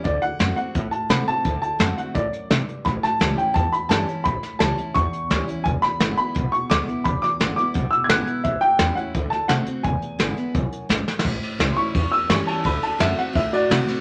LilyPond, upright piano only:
\new Staff \with { instrumentName = "Upright piano" } { \time 4/4 \key d \major \tempo 4 = 171 d''8 fis''4 fis''4 a''8 b''8 a''8~ | a''8 a''4 fis''8 d''4. r8 | b''8 a''4 g''8 a''8 b''8 a''4 | b''4 a''4 cis'''4. r8 |
gis''8 b''4 b''4 cis'''8 d'''8 r8 | b''8 d'''4 d'''4 e'''16. gis'''32 fis'''8 r8 | e''8 g''4 fis''4 a''8 fis''4 | gis''2.~ gis''8 r8 |
r4. <c''' cis'''>4 e'''8 cis'''8 a''8 | b''8 a''8 e''8 fis''8 e''8 <fis' d''>4. | }